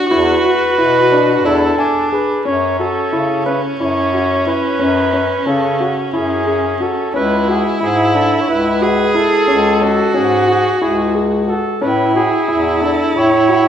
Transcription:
Already playing: viola F#4
0.11 bass clarinet E2, grand piano E4, flugelhorn B4
0.44 grand piano F#4
0.78 bass clarinet B2, grand piano E4
1.12 grand piano D4
1.45 bass clarinet E2, grand piano D4, viola E4, flugelhorn A4
1.78 viola D4, grand piano G#5
2.12 grand piano G#4, flugelhorn B4
2.45 bass clarinet F#2, grand piano C#4, viola C#4, flugelhorn C#5
2.79 grand piano F#4, flugelhorn A4
3.13 bass clarinet C#3, grand piano E4
3.46 grand piano C#4, flugelhorn B4
3.80 bass clarinet F#2, grand piano E4, flugelhorn C#5
4.13 grand piano F#4
4.46 grand piano E4, flugelhorn B4
4.79 bass clarinet F#2, grand piano C#4
5.13 grand piano C#4
5.46 bass clarinet C#3, grand piano C#4, flugelhorn A4
5.80 grand piano F#4
6.13 bass clarinet F#2, grand piano E4, flugelhorn G#4
6.47 grand piano G#4
6.80 grand piano F#4, flugelhorn A4
7.14 bass clarinet C#2, grand piano C#4, viola E4, flugelhorn B4
7.48 grand piano F#4, flugelhorn G#4
7.80 bass clarinet G#2, grand piano E4, flugelhorn G#4
8.14 grand piano D4, flugelhorn A4
8.41 flugelhorn C#5
8.48 bass clarinet C#2, grand piano E4, flugelhorn B4
8.81 grand piano F#4, viola G#4
9.14 grand piano E4, flugelhorn A4
9.48 bass clarinet C#2, grand piano C#4
9.81 grand piano C#4, viola F#4
10.14 bass clarinet G#2, grand piano C#4, flugelhorn G#4
10.48 grand piano F#4, flugelhorn G#4
10.81 bass clarinet C#2, grand piano E4, flugelhorn G#4
11.15 grand piano G#4
11.48 grand piano F#4, flugelhorn A4
11.81 bass clarinet A2, grand piano C#4, viola E4, flugelhorn B4
12.15 grand piano F#4, flugelhorn G#4
12.48 bass clarinet E2, grand piano E4
12.81 grand piano D4, flugelhorn A4
13.16 bass clarinet A2, grand piano E4, flugelhorn C#5
13.49 grand piano F#4

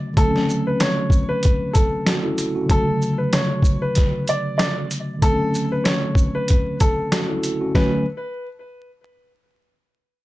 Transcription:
Already playing: tine electric piano C#3 D3 F#3 A3
0.14 tine electric piano D3 F#3, upright piano A4, kick, closed hi-hat
0.19 tine electric piano A3 C4
0.28 tine electric piano C#4
0.36 snare
0.49 shaker
0.67 upright piano B4
0.80 upright piano C#5, snare, closed hi-hat
1.10 kick, shaker
1.29 upright piano B4
1.43 kick, closed hi-hat
1.73 upright piano A4, kick, closed hi-hat, shaker
2.06 tine electric piano C#4 F#4, snare, closed hi-hat
2.23 tine electric piano E4 A4
2.38 closed hi-hat, shaker
2.55 tine electric piano C#4 F#4
2.66 tine electric piano D3 F#3, kick, closed hi-hat
2.71 tine electric piano C#3 A3, upright piano A4
3.02 shaker
3.18 upright piano B4
3.33 upright piano C#5, snare, closed hi-hat
3.62 kick, shaker
3.82 upright piano B4
3.95 kick, snare, closed hi-hat
4.28 upright piano D5, closed hi-hat, shaker
4.58 upright piano D5, snare, closed hi-hat
4.91 closed hi-hat, shaker
5.19 tine electric piano D3 F#3, upright piano A4, kick, closed hi-hat
5.24 tine electric piano A3 C4
5.33 tine electric piano C#4
5.54 shaker
5.72 upright piano B4
5.84 upright piano C#5, snare, closed hi-hat
6.15 kick, shaker
6.35 upright piano B4
6.48 kick, closed hi-hat
6.80 upright piano A4, kick, closed hi-hat, shaker
7.12 tine electric piano C#4 F#4, snare, closed hi-hat
7.29 tine electric piano E4 A4
7.44 closed hi-hat, shaker
7.61 tine electric piano C#4 F#4
7.75 tine electric piano D3 F#3 A3 C#4, upright piano B4, kick, snare

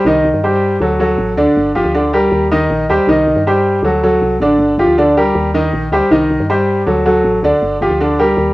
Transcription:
0.05 fm bass C2, grand piano D#3 D#4 D#5
0.24 fm bass C2
0.34 fm bass G2
0.44 grand piano G3 G4 C5
0.80 fm bass D2, grand piano F#3 F#4 A4
1.00 grand piano F#3 F#4 A4
1.18 fm bass A1
1.37 fm bass D2, grand piano D3 D4 D5
1.56 fm bass G1
1.75 fm bass G1, grand piano F3 F4 G4
1.85 fm bass D2
1.94 grand piano D3 D4 D5
2.13 grand piano G3 G4 A#4
2.31 fm bass D#2
2.51 grand piano D#3 D#4 D#5
2.70 fm bass A#1
2.89 fm bass D#2, grand piano G3 G4 C5
3.07 fm bass C2, grand piano D#3 D#4 D#5
3.27 fm bass C2
3.36 fm bass G2
3.47 grand piano G3 G4 C5
3.82 fm bass D2, grand piano F#3 F#4 A4
4.03 grand piano F#3 F#4 A4
4.22 fm bass C2
4.40 fm bass A1, grand piano D3 D4 D5
4.58 fm bass G1
4.78 fm bass G1, grand piano F3 F4 G4
4.86 fm bass D2
4.98 grand piano D3 D4 D5
5.17 grand piano G3 G4 A#4
5.35 fm bass D#2
5.54 grand piano D#3 D#4 D#5
5.73 fm bass A#1
5.92 fm bass D2, grand piano G3 G4 C5
6.11 fm bass C2, grand piano D#3 D#4 D#5
6.30 fm bass C2
6.40 fm bass G2
6.50 grand piano G3 G4 C5
6.87 fm bass D2, grand piano F#3 F#4 A4
7.06 grand piano F#3 F#4 A4
7.24 fm bass A1
7.43 fm bass D2, grand piano D3 D4 D5
7.62 fm bass G1
7.81 fm bass G1, grand piano F3 F4 G4
7.90 fm bass D2
8.00 grand piano D3 D4 D5
8.19 grand piano G3 G4 A#4
8.37 fm bass D#2

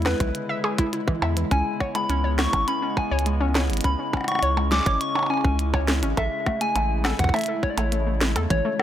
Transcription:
Already playing: analog synth bass E2, ambient pad C#3 D3 G#3 E4
0.02 synth arpeggio sound E4, soft synth lead B4, snare, closed hi-hat, percussion blips
0.20 analog synth bass B1, synth arpeggio sound E4, kick, closed hi-hat
0.35 closed hi-hat
0.49 synth arpeggio sound E5
0.64 synth arpeggio sound G#4, percussion blips
0.78 synth arpeggio sound E4, kick, closed hi-hat
0.93 synth arpeggio sound E4, closed hi-hat
1.08 synth arpeggio sound E3, kick
1.22 analog synth bass E2, synth arpeggio sound E5, percussion blips
1.37 synth arpeggio sound E3, closed hi-hat
1.51 analog synth bass C#2, ambient pad C#3 B3, synth arpeggio sound C#4, soft synth lead G#5, kick, closed hi-hat
1.80 synth arpeggio sound C#5, kick, percussion blips
1.95 synth arpeggio sound G#3, soft synth lead B5, closed hi-hat, percussion blips
2.10 analog synth bass C#2, synth arpeggio sound C#4, closed hi-hat
2.24 synth arpeggio sound C#5
2.39 soft synth lead C#6, snare, percussion blips
2.53 analog synth bass G#1, synth arpeggio sound C#4, kick, closed hi-hat, percussion blips
2.68 synth arpeggio sound C#4, soft synth lead B5, closed hi-hat
2.82 synth arpeggio sound C#4
2.97 soft synth lead G#5, kick, percussion blips
3.11 analog synth bass C#2, synth arpeggio sound C#5
3.19 closed hi-hat
3.26 synth arpeggio sound G#3, closed hi-hat
3.41 synth arpeggio sound C#4
3.55 synth arpeggio sound C#5, snare, percussion blips
3.70 analog synth bass G#1, closed hi-hat
3.73 closed hi-hat
3.77 closed hi-hat
3.81 analog synth bass C#2, synth arpeggio sound C#4, ambient pad C#4, kick, closed hi-hat
3.84 soft synth lead B5, closed hi-hat
3.99 synth arpeggio sound C#4
4.13 synth arpeggio sound C#4, kick, percussion blips
4.17 percussion blips
4.21 percussion blips
4.24 closed hi-hat, percussion blips
4.28 soft synth lead C#6, percussion blips
4.32 percussion blips
4.35 percussion blips
4.39 analog synth bass C#2, synth arpeggio sound C#5, closed hi-hat, percussion blips
4.57 synth arpeggio sound G#3, percussion blips
4.72 synth arpeggio sound C#4, soft synth lead D6, snare
4.86 analog synth bass G#1, synth arpeggio sound C#5, kick, closed hi-hat
5.01 soft synth lead C#6, closed hi-hat
5.15 synth arpeggio sound C#4, percussion blips
5.19 percussion blips
5.23 percussion blips
5.26 synth arpeggio sound C#4, percussion blips
5.30 soft synth lead G#5, percussion blips
5.34 percussion blips
5.37 percussion blips
5.41 analog synth bass C#2, synth arpeggio sound C#4, kick, percussion blips
5.59 closed hi-hat
5.74 synth arpeggio sound C#5, kick, percussion blips
5.88 synth arpeggio sound G#3, snare
6.03 analog synth bass G#1, synth arpeggio sound C#4, closed hi-hat
6.17 analog synth bass A1, ambient pad A3 E4, synth arpeggio sound A4, soft synth lead E5, kick, closed hi-hat, percussion blips
6.46 synth arpeggio sound A3, kick, percussion blips
6.61 synth arpeggio sound A3, soft synth lead G#5, closed hi-hat
6.76 analog synth bass A1, synth arpeggio sound A3, closed hi-hat, percussion blips
7.05 synth arpeggio sound A4, snare, percussion blips
7.19 analog synth bass E2, synth arpeggio sound E3, soft synth lead F#5, kick, closed hi-hat
7.24 kick
7.29 kick
7.34 synth arpeggio sound A3, soft synth lead E5, closed hi-hat, percussion blips
7.36 closed hi-hat
7.39 closed hi-hat
7.41 closed hi-hat
7.44 closed hi-hat
7.46 synth arpeggio sound A4, closed hi-hat
7.63 soft synth lead C#5, kick
7.70 soft synth lead D5
7.77 analog synth bass A1, synth arpeggio sound A3, soft synth lead C#5, closed hi-hat, percussion blips
7.92 synth arpeggio sound A3, closed hi-hat
8.07 synth arpeggio sound A3
8.21 snare
8.36 analog synth bass E2, synth arpeggio sound A4, closed hi-hat, percussion blips
8.50 analog synth bass A1, synth arpeggio sound E3, ambient pad F#4, soft synth lead C#5, kick, closed hi-hat
8.65 synth arpeggio sound A3
8.79 synth arpeggio sound A4, percussion blips

